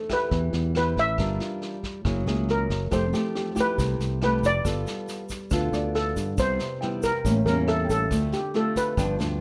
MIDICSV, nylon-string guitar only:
0, 0, Header, 1, 2, 480
1, 0, Start_track
1, 0, Tempo, 432277
1, 1321, Time_signature, 4, 2, 24, 8
1, 10446, End_track
2, 0, Start_track
2, 0, Title_t, "Nylon-string guitar"
2, 0, Program_c, 0, 24
2, 0, Note_on_c, 0, 57, 58
2, 104, Note_on_c, 0, 64, 72
2, 111, Note_on_c, 0, 67, 61
2, 334, Note_off_c, 0, 57, 0
2, 348, Note_on_c, 0, 52, 56
2, 794, Note_off_c, 0, 64, 0
2, 795, Note_off_c, 0, 67, 0
2, 838, Note_on_c, 0, 64, 59
2, 841, Note_on_c, 0, 67, 56
2, 847, Note_on_c, 0, 72, 72
2, 1149, Note_off_c, 0, 64, 0
2, 1149, Note_off_c, 0, 67, 0
2, 1153, Note_off_c, 0, 72, 0
2, 1291, Note_off_c, 0, 52, 0
2, 1313, Note_on_c, 0, 55, 66
2, 1322, Note_on_c, 0, 65, 55
2, 1323, Note_on_c, 0, 62, 59
2, 1327, Note_on_c, 0, 70, 73
2, 1965, Note_off_c, 0, 62, 0
2, 1967, Note_off_c, 0, 65, 0
2, 1970, Note_off_c, 0, 70, 0
2, 2255, Note_off_c, 0, 55, 0
2, 2275, Note_on_c, 0, 54, 55
2, 2277, Note_on_c, 0, 58, 52
2, 2282, Note_on_c, 0, 64, 57
2, 2285, Note_on_c, 0, 68, 67
2, 2480, Note_off_c, 0, 58, 0
2, 2484, Note_off_c, 0, 64, 0
2, 2485, Note_off_c, 0, 68, 0
2, 2515, Note_on_c, 0, 58, 60
2, 2522, Note_on_c, 0, 64, 54
2, 2523, Note_on_c, 0, 68, 60
2, 3201, Note_off_c, 0, 58, 0
2, 3203, Note_off_c, 0, 64, 0
2, 3204, Note_off_c, 0, 68, 0
2, 3215, Note_off_c, 0, 54, 0
2, 3229, Note_on_c, 0, 53, 56
2, 3233, Note_on_c, 0, 57, 54
2, 3241, Note_on_c, 0, 64, 52
2, 3243, Note_on_c, 0, 67, 69
2, 3377, Note_off_c, 0, 57, 0
2, 3379, Note_off_c, 0, 64, 0
2, 3384, Note_off_c, 0, 67, 0
2, 3473, Note_on_c, 0, 57, 65
2, 3478, Note_on_c, 0, 64, 57
2, 3482, Note_on_c, 0, 67, 67
2, 3920, Note_off_c, 0, 57, 0
2, 3921, Note_off_c, 0, 64, 0
2, 3924, Note_off_c, 0, 67, 0
2, 3941, Note_on_c, 0, 57, 63
2, 3948, Note_on_c, 0, 64, 70
2, 3955, Note_on_c, 0, 67, 77
2, 4173, Note_off_c, 0, 53, 0
2, 4192, Note_on_c, 0, 48, 61
2, 4634, Note_off_c, 0, 57, 0
2, 4636, Note_off_c, 0, 64, 0
2, 4640, Note_off_c, 0, 67, 0
2, 4689, Note_on_c, 0, 57, 61
2, 4689, Note_on_c, 0, 64, 65
2, 4693, Note_on_c, 0, 67, 71
2, 4994, Note_off_c, 0, 64, 0
2, 4996, Note_off_c, 0, 57, 0
2, 4997, Note_off_c, 0, 67, 0
2, 5134, Note_off_c, 0, 48, 0
2, 5160, Note_on_c, 0, 55, 57
2, 5165, Note_on_c, 0, 65, 62
2, 5166, Note_on_c, 0, 59, 55
2, 5171, Note_on_c, 0, 69, 61
2, 5808, Note_off_c, 0, 59, 0
2, 5810, Note_off_c, 0, 65, 0
2, 5811, Note_off_c, 0, 69, 0
2, 6099, Note_off_c, 0, 55, 0
2, 6122, Note_on_c, 0, 50, 55
2, 6130, Note_on_c, 0, 59, 58
2, 6134, Note_on_c, 0, 65, 61
2, 6136, Note_on_c, 0, 69, 67
2, 7047, Note_off_c, 0, 59, 0
2, 7047, Note_off_c, 0, 65, 0
2, 7052, Note_off_c, 0, 69, 0
2, 7060, Note_off_c, 0, 50, 0
2, 7090, Note_on_c, 0, 48, 61
2, 7095, Note_on_c, 0, 55, 56
2, 7097, Note_on_c, 0, 59, 57
2, 7101, Note_on_c, 0, 64, 63
2, 7398, Note_off_c, 0, 55, 0
2, 7399, Note_off_c, 0, 59, 0
2, 7402, Note_off_c, 0, 64, 0
2, 7578, Note_on_c, 0, 55, 54
2, 7585, Note_on_c, 0, 59, 59
2, 7587, Note_on_c, 0, 64, 61
2, 7894, Note_off_c, 0, 55, 0
2, 7896, Note_off_c, 0, 59, 0
2, 7898, Note_off_c, 0, 64, 0
2, 8023, Note_off_c, 0, 48, 0
2, 8051, Note_on_c, 0, 45, 53
2, 8054, Note_on_c, 0, 55, 58
2, 8055, Note_on_c, 0, 58, 65
2, 8060, Note_on_c, 0, 61, 62
2, 8188, Note_off_c, 0, 58, 0
2, 8189, Note_off_c, 0, 55, 0
2, 8193, Note_off_c, 0, 61, 0
2, 8293, Note_on_c, 0, 55, 61
2, 8298, Note_on_c, 0, 58, 58
2, 8302, Note_on_c, 0, 61, 73
2, 8970, Note_off_c, 0, 55, 0
2, 8972, Note_off_c, 0, 58, 0
2, 8974, Note_off_c, 0, 61, 0
2, 8984, Note_off_c, 0, 45, 0
2, 9004, Note_on_c, 0, 50, 57
2, 9005, Note_on_c, 0, 57, 56
2, 9007, Note_on_c, 0, 60, 53
2, 9018, Note_on_c, 0, 65, 60
2, 9312, Note_off_c, 0, 57, 0
2, 9316, Note_off_c, 0, 60, 0
2, 9317, Note_off_c, 0, 65, 0
2, 9484, Note_on_c, 0, 57, 65
2, 9489, Note_on_c, 0, 60, 58
2, 9497, Note_on_c, 0, 65, 69
2, 9940, Note_off_c, 0, 50, 0
2, 9944, Note_off_c, 0, 57, 0
2, 9946, Note_off_c, 0, 60, 0
2, 9951, Note_off_c, 0, 65, 0
2, 9963, Note_on_c, 0, 43, 64
2, 9970, Note_on_c, 0, 53, 62
2, 9970, Note_on_c, 0, 59, 56
2, 9977, Note_on_c, 0, 62, 69
2, 10167, Note_off_c, 0, 53, 0
2, 10169, Note_off_c, 0, 59, 0
2, 10170, Note_off_c, 0, 62, 0
2, 10201, Note_on_c, 0, 53, 53
2, 10212, Note_on_c, 0, 59, 61
2, 10213, Note_on_c, 0, 62, 58
2, 10446, Note_off_c, 0, 43, 0
2, 10446, Note_off_c, 0, 53, 0
2, 10446, Note_off_c, 0, 59, 0
2, 10446, Note_off_c, 0, 62, 0
2, 10446, End_track
0, 0, End_of_file